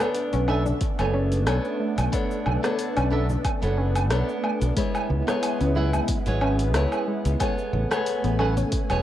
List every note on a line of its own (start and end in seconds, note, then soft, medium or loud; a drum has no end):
0.00 4.73 A3 medium
0.00 0.44 B3 medium
0.00 9.02 B3 medium
0.00 0.14 B3 medium
0.00 4.73 D4 medium
0.00 0.45 D4 medium
0.00 0.45 A4 medium
0.00 0.45 C#5 loud
0.00 cross-stick medium
0.00 open hi-hat soft
0.00 cabasa medium
0.00 low woodblock medium
0.14 open hi-hat medium
0.14 cabasa medium
0.33 0.72 B1 medium
0.33 0.47 C#4 loud
0.33 open hi-hat soft
0.33 cabasa soft
0.48 0.62 B3 medium
0.48 0.58 D4 loud
0.48 0.62 D4 medium
0.48 0.63 A4 medium
0.48 0.63 E5 medium
0.48 high conga medium
0.48 low woodblock medium
0.65 0.80 D4 medium
0.65 low conga medium
0.65 cabasa medium
0.81 kick loud
0.81 open hi-hat medium
0.81 cabasa soft
0.99 1.47 F#1 medium
0.99 1.43 B3 medium
0.99 1.44 D4 medium
0.99 1.44 A4 medium
0.99 1.44 C#5 medium
0.99 open hi-hat soft
0.99 high conga medium
0.99 cabasa soft
0.99 low woodblock medium
1.13 1.24 C#4 loud
1.32 open hi-hat soft
1.32 cabasa medium
1.46 1.58 B1 medium
1.46 2.09 B3 medium
1.46 1.64 B3 medium
1.46 2.09 D4 medium
1.46 2.10 A4 medium
1.46 2.10 C#5 medium
1.46 cross-stick medium
1.46 open hi-hat medium
1.46 cabasa soft
1.46 low woodblock medium
1.65 cabasa soft
1.80 1.97 A3 medium
1.98 2.07 B1 loud
1.98 open hi-hat soft
1.98 cabasa medium
1.98 low woodblock medium
2.12 2.29 A3 medium
2.12 2.59 B3 medium
2.12 2.59 D4 medium
2.12 2.60 A4 medium
2.12 2.60 C#5 medium
2.12 kick loud
2.12 open hi-hat medium
2.12 cabasa soft
2.31 cabasa soft
2.46 2.57 B1 medium
2.46 low conga medium
2.46 low woodblock medium
2.63 3.08 B3 medium
2.63 2.78 B3 medium
2.63 3.08 D4 medium
2.63 3.08 A4 medium
2.63 3.09 C#5 medium
2.63 cross-stick medium
2.63 open hi-hat soft
2.63 cabasa medium
2.79 open hi-hat medium
2.79 cabasa medium
2.97 3.36 B1 medium
2.97 3.11 C#4 loud
2.97 open hi-hat soft
2.97 cabasa soft
2.97 low woodblock medium
3.11 3.26 B3 medium
3.11 3.26 D4 medium
3.11 3.22 D4 loud
3.11 3.26 A4 medium
3.11 3.27 E5 medium
3.11 high conga medium
3.30 3.44 D4 medium
3.30 low conga medium
3.30 cabasa medium
3.45 kick loud
3.45 open hi-hat medium
3.45 cabasa soft
3.45 low woodblock medium
3.62 4.11 F#1 medium
3.62 4.07 B3 medium
3.62 4.07 D4 medium
3.62 4.07 A4 medium
3.62 4.08 C#5 medium
3.62 open hi-hat soft
3.62 high conga medium
3.62 cabasa soft
3.78 3.87 C#4 loud
3.96 open hi-hat soft
3.96 cabasa medium
3.96 low woodblock medium
4.10 4.22 B1 medium
4.10 4.73 B3 medium
4.10 4.28 B3 medium
4.10 4.73 D4 medium
4.10 4.73 A4 medium
4.10 4.74 C#5 medium
4.10 cross-stick medium
4.10 open hi-hat medium
4.10 cabasa soft
4.29 cabasa soft
4.44 4.61 A3 medium
4.44 low woodblock medium
4.62 4.71 B1 medium
4.62 open hi-hat soft
4.62 cabasa medium
4.77 4.93 G#3 medium
4.77 7.38 G#3 medium
4.77 5.23 B3 medium
4.77 5.24 E4 medium
4.77 7.38 E4 medium
4.77 5.24 G#4 medium
4.77 5.24 C#5 loud
4.77 kick loud
4.77 open hi-hat medium
4.77 cabasa soft
4.95 cabasa soft
4.95 low woodblock medium
5.09 5.21 C#2 medium
5.09 low conga medium
5.27 5.72 B3 medium
5.27 5.42 B3 medium
5.27 5.72 E4 medium
5.27 5.72 G#4 medium
5.27 5.73 C#5 loud
5.27 cross-stick medium
5.27 open hi-hat soft
5.27 cabasa medium
5.43 open hi-hat medium
5.43 cabasa soft
5.43 low woodblock medium
5.60 5.99 C#2 medium
5.60 5.75 C#4 medium
5.60 open hi-hat soft
5.60 cabasa soft
5.75 5.90 B3 medium
5.75 5.90 E4 medium
5.75 5.86 E4 loud
5.75 5.90 G#4 medium
5.75 5.91 F#5 medium
5.75 high conga medium
5.93 6.08 E4 medium
5.93 low conga medium
5.93 cabasa medium
5.93 low woodblock medium
6.08 kick loud
6.08 open hi-hat medium
6.08 cabasa soft
6.26 6.74 G#1 medium
6.26 6.71 B3 medium
6.26 6.71 E4 medium
6.26 6.72 G#4 medium
6.26 6.72 C#5 medium
6.26 open hi-hat soft
6.26 high conga medium
6.26 cabasa soft
6.42 6.51 C#4 loud
6.42 low woodblock medium
6.59 open hi-hat soft
6.59 cabasa medium
6.74 6.85 C#2 medium
6.74 7.37 B3 medium
6.74 6.92 B3 medium
6.74 7.37 E4 medium
6.74 7.38 G#4 medium
6.74 7.38 C#5 medium
6.74 cross-stick medium
6.74 open hi-hat medium
6.74 cabasa soft
6.92 cabasa soft
6.92 low woodblock medium
7.08 7.25 G#3 medium
7.25 7.35 C#2 medium
7.25 open hi-hat soft
7.25 cabasa medium
7.40 7.57 G#3 medium
7.40 9.02 A3 medium
7.40 7.87 B3 medium
7.40 7.87 G#4 medium
7.40 7.87 A4 medium
7.40 7.88 C#5 loud
7.40 9.02 G#5 medium
7.40 kick loud
7.40 open hi-hat medium
7.40 cabasa soft
7.40 low woodblock medium
7.58 cabasa soft
7.73 7.84 A1 loud
7.73 low conga medium
7.91 8.06 A3 medium
7.91 8.35 B3 medium
7.91 8.36 G#4 medium
7.91 8.36 A4 medium
7.91 8.36 C#5 medium
7.91 cross-stick medium
7.91 open hi-hat soft
7.91 cabasa medium
7.91 low woodblock medium
8.06 open hi-hat medium
8.06 cabasa medium
8.24 8.63 A1 medium
8.24 8.39 B3 medium
8.24 open hi-hat soft
8.24 cabasa soft
8.39 8.53 B3 medium
8.39 8.49 C#4 loud
8.39 8.54 G#4 medium
8.39 8.54 A4 medium
8.39 8.54 F#5 medium
8.39 high conga medium
8.39 low woodblock medium
8.57 8.72 C#4 medium
8.57 open hi-hat soft
8.57 low conga medium
8.57 cabasa medium
8.72 kick loud
8.72 open hi-hat medium
8.72 cabasa medium
8.90 9.02 E1 medium
8.90 9.02 B3 medium
8.90 9.02 G#4 medium
8.90 9.02 A4 medium
8.90 9.02 C#5 medium
8.90 open hi-hat soft
8.90 high conga medium
8.90 cabasa soft
8.90 low woodblock medium